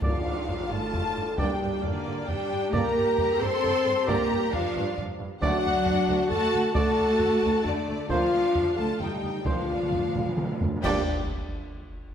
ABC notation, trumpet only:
X:1
M:3/4
L:1/8
Q:1/4=134
K:Gm
V:1 name="Trumpet"
d z4 z | d z4 z | d z4 z | d z4 z |
d z4 z | d z4 z | c z4 z | c z4 z |
d z4 z |]